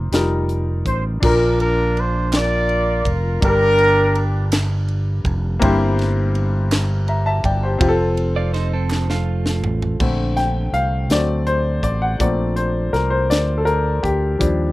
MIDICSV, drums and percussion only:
0, 0, Header, 1, 2, 480
1, 0, Start_track
1, 0, Key_signature, -2, "major"
1, 0, Tempo, 732601
1, 803, Time_signature, 6, 3, 24, 8
1, 9646, End_track
2, 0, Start_track
2, 0, Title_t, "Drums"
2, 82, Note_on_c, 9, 42, 94
2, 90, Note_on_c, 9, 38, 96
2, 148, Note_off_c, 9, 42, 0
2, 155, Note_off_c, 9, 38, 0
2, 322, Note_on_c, 9, 42, 37
2, 387, Note_off_c, 9, 42, 0
2, 561, Note_on_c, 9, 36, 71
2, 564, Note_on_c, 9, 42, 49
2, 627, Note_off_c, 9, 36, 0
2, 629, Note_off_c, 9, 42, 0
2, 804, Note_on_c, 9, 36, 118
2, 805, Note_on_c, 9, 49, 101
2, 870, Note_off_c, 9, 36, 0
2, 871, Note_off_c, 9, 49, 0
2, 1048, Note_on_c, 9, 53, 45
2, 1114, Note_off_c, 9, 53, 0
2, 1290, Note_on_c, 9, 53, 38
2, 1356, Note_off_c, 9, 53, 0
2, 1523, Note_on_c, 9, 39, 100
2, 1523, Note_on_c, 9, 53, 82
2, 1530, Note_on_c, 9, 38, 109
2, 1588, Note_off_c, 9, 53, 0
2, 1589, Note_off_c, 9, 39, 0
2, 1596, Note_off_c, 9, 38, 0
2, 1763, Note_on_c, 9, 53, 34
2, 1828, Note_off_c, 9, 53, 0
2, 2001, Note_on_c, 9, 36, 87
2, 2007, Note_on_c, 9, 53, 49
2, 2066, Note_off_c, 9, 36, 0
2, 2072, Note_off_c, 9, 53, 0
2, 2243, Note_on_c, 9, 36, 122
2, 2245, Note_on_c, 9, 53, 67
2, 2308, Note_off_c, 9, 36, 0
2, 2311, Note_off_c, 9, 53, 0
2, 2480, Note_on_c, 9, 53, 44
2, 2545, Note_off_c, 9, 53, 0
2, 2722, Note_on_c, 9, 53, 43
2, 2787, Note_off_c, 9, 53, 0
2, 2960, Note_on_c, 9, 53, 94
2, 2967, Note_on_c, 9, 38, 110
2, 2967, Note_on_c, 9, 39, 111
2, 3025, Note_off_c, 9, 53, 0
2, 3032, Note_off_c, 9, 39, 0
2, 3033, Note_off_c, 9, 38, 0
2, 3200, Note_on_c, 9, 53, 33
2, 3266, Note_off_c, 9, 53, 0
2, 3439, Note_on_c, 9, 36, 88
2, 3446, Note_on_c, 9, 53, 44
2, 3504, Note_off_c, 9, 36, 0
2, 3512, Note_off_c, 9, 53, 0
2, 3682, Note_on_c, 9, 36, 127
2, 3684, Note_on_c, 9, 53, 73
2, 3747, Note_off_c, 9, 36, 0
2, 3749, Note_off_c, 9, 53, 0
2, 3924, Note_on_c, 9, 53, 43
2, 3934, Note_on_c, 9, 38, 40
2, 3990, Note_off_c, 9, 53, 0
2, 4000, Note_off_c, 9, 38, 0
2, 4161, Note_on_c, 9, 53, 42
2, 4226, Note_off_c, 9, 53, 0
2, 4397, Note_on_c, 9, 53, 89
2, 4402, Note_on_c, 9, 39, 106
2, 4405, Note_on_c, 9, 38, 112
2, 4463, Note_off_c, 9, 53, 0
2, 4467, Note_off_c, 9, 39, 0
2, 4470, Note_off_c, 9, 38, 0
2, 4637, Note_on_c, 9, 53, 38
2, 4703, Note_off_c, 9, 53, 0
2, 4875, Note_on_c, 9, 36, 85
2, 4879, Note_on_c, 9, 53, 47
2, 4940, Note_off_c, 9, 36, 0
2, 4945, Note_off_c, 9, 53, 0
2, 5116, Note_on_c, 9, 36, 126
2, 5116, Note_on_c, 9, 53, 67
2, 5181, Note_off_c, 9, 36, 0
2, 5181, Note_off_c, 9, 53, 0
2, 5355, Note_on_c, 9, 53, 47
2, 5421, Note_off_c, 9, 53, 0
2, 5597, Note_on_c, 9, 53, 44
2, 5602, Note_on_c, 9, 38, 31
2, 5662, Note_off_c, 9, 53, 0
2, 5667, Note_off_c, 9, 38, 0
2, 5831, Note_on_c, 9, 39, 108
2, 5844, Note_on_c, 9, 38, 65
2, 5896, Note_off_c, 9, 39, 0
2, 5910, Note_off_c, 9, 38, 0
2, 5961, Note_on_c, 9, 38, 64
2, 6026, Note_off_c, 9, 38, 0
2, 6197, Note_on_c, 9, 38, 82
2, 6262, Note_off_c, 9, 38, 0
2, 6314, Note_on_c, 9, 43, 100
2, 6379, Note_off_c, 9, 43, 0
2, 6437, Note_on_c, 9, 43, 91
2, 6502, Note_off_c, 9, 43, 0
2, 6553, Note_on_c, 9, 36, 101
2, 6557, Note_on_c, 9, 49, 87
2, 6619, Note_off_c, 9, 36, 0
2, 6622, Note_off_c, 9, 49, 0
2, 6794, Note_on_c, 9, 42, 47
2, 6805, Note_on_c, 9, 38, 33
2, 6860, Note_off_c, 9, 42, 0
2, 6870, Note_off_c, 9, 38, 0
2, 7036, Note_on_c, 9, 42, 41
2, 7102, Note_off_c, 9, 42, 0
2, 7273, Note_on_c, 9, 42, 95
2, 7280, Note_on_c, 9, 38, 105
2, 7338, Note_off_c, 9, 42, 0
2, 7346, Note_off_c, 9, 38, 0
2, 7514, Note_on_c, 9, 42, 36
2, 7579, Note_off_c, 9, 42, 0
2, 7751, Note_on_c, 9, 36, 70
2, 7756, Note_on_c, 9, 42, 51
2, 7817, Note_off_c, 9, 36, 0
2, 7822, Note_off_c, 9, 42, 0
2, 7994, Note_on_c, 9, 36, 110
2, 7994, Note_on_c, 9, 42, 74
2, 8059, Note_off_c, 9, 36, 0
2, 8060, Note_off_c, 9, 42, 0
2, 8233, Note_on_c, 9, 42, 47
2, 8299, Note_off_c, 9, 42, 0
2, 8479, Note_on_c, 9, 42, 41
2, 8484, Note_on_c, 9, 38, 31
2, 8545, Note_off_c, 9, 42, 0
2, 8550, Note_off_c, 9, 38, 0
2, 8721, Note_on_c, 9, 42, 92
2, 8728, Note_on_c, 9, 38, 99
2, 8786, Note_off_c, 9, 42, 0
2, 8794, Note_off_c, 9, 38, 0
2, 8957, Note_on_c, 9, 42, 39
2, 9023, Note_off_c, 9, 42, 0
2, 9197, Note_on_c, 9, 36, 73
2, 9207, Note_on_c, 9, 42, 45
2, 9262, Note_off_c, 9, 36, 0
2, 9272, Note_off_c, 9, 42, 0
2, 9440, Note_on_c, 9, 36, 109
2, 9443, Note_on_c, 9, 42, 74
2, 9506, Note_off_c, 9, 36, 0
2, 9508, Note_off_c, 9, 42, 0
2, 9646, End_track
0, 0, End_of_file